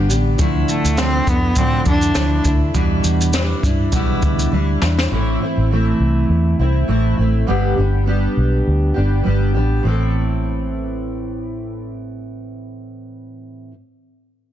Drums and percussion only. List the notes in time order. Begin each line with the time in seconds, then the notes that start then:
0.10 shaker
0.39 kick, shaker
0.69 shaker
0.85 shaker
0.98 snare, shaker
1.27 kick, shaker
1.56 kick, shaker
1.86 kick, shaker
2.02 shaker
2.15 snare, shaker
2.45 kick, shaker
2.75 kick, shaker
3.04 shaker
3.21 shaker
3.33 snare, shaker
3.63 kick, shaker
3.93 kick, shaker
4.22 kick, shaker
4.39 shaker
4.82 snare
4.98 snare